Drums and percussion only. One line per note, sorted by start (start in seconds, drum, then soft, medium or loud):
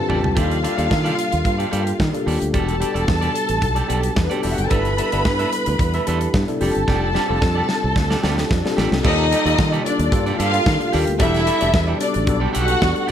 0.10 floor tom medium
0.24 floor tom medium
0.37 kick loud
0.37 closed hi-hat medium
0.51 closed hi-hat soft
0.64 closed hi-hat medium
0.78 closed hi-hat soft
0.91 kick loud
0.91 snare loud
1.06 closed hi-hat soft
1.19 closed hi-hat medium
1.32 closed hi-hat soft
1.45 kick loud
1.45 closed hi-hat medium
1.60 closed hi-hat soft
1.73 closed hi-hat medium
1.87 closed hi-hat soft
2.00 kick loud
2.00 snare loud
2.14 closed hi-hat soft
2.28 open hi-hat medium
2.42 closed hi-hat soft
2.54 kick loud
2.54 closed hi-hat medium
2.68 closed hi-hat soft
2.82 closed hi-hat medium
2.96 closed hi-hat soft
3.08 kick loud
3.08 snare loud
3.22 closed hi-hat soft
3.35 closed hi-hat medium
3.49 closed hi-hat soft
3.62 kick loud
3.62 closed hi-hat medium
3.76 closed hi-hat soft
3.90 closed hi-hat medium
4.03 closed hi-hat soft
4.16 kick loud
4.16 snare loud
4.31 closed hi-hat soft
4.43 open hi-hat medium
4.58 closed hi-hat soft
4.71 kick loud
4.71 closed hi-hat medium
4.85 closed hi-hat soft
4.98 closed hi-hat medium
5.12 closed hi-hat soft
5.25 kick loud
5.25 snare loud
5.39 closed hi-hat soft
5.53 closed hi-hat medium
5.66 closed hi-hat soft
5.79 kick loud
5.79 closed hi-hat medium
5.94 closed hi-hat soft
6.07 closed hi-hat medium
6.21 closed hi-hat soft
6.34 kick loud
6.34 snare loud
6.48 closed hi-hat soft
6.61 open hi-hat medium
6.75 closed hi-hat soft
6.88 kick loud
6.88 snare medium
7.15 snare medium
7.42 kick loud
7.42 snare medium
7.69 snare medium
7.96 kick loud
7.96 snare medium
8.11 snare medium
8.24 snare medium
8.38 snare medium
8.51 kick loud
8.51 snare loud
8.66 snare medium
8.78 snare loud
8.92 snare loud
9.05 kick loud
9.05 crash loud
9.32 closed hi-hat medium
9.46 closed hi-hat soft
9.59 kick loud
9.59 snare loud
9.73 closed hi-hat soft
9.86 closed hi-hat medium
9.99 closed hi-hat soft
10.12 kick loud
10.12 closed hi-hat medium
10.27 closed hi-hat soft
10.40 closed hi-hat medium
10.54 closed hi-hat medium
10.66 kick loud
10.66 snare loud
10.81 closed hi-hat soft
10.93 open hi-hat medium
11.07 closed hi-hat medium
11.20 kick loud
11.20 closed hi-hat medium
11.34 snare soft
11.34 closed hi-hat soft
11.47 closed hi-hat medium
11.61 closed hi-hat soft
11.74 kick loud
11.74 snare loud
12.01 closed hi-hat medium
12.14 closed hi-hat soft
12.27 kick loud
12.27 closed hi-hat medium
12.55 closed hi-hat medium
12.68 closed hi-hat soft
12.82 kick loud
12.82 snare loud
12.96 closed hi-hat soft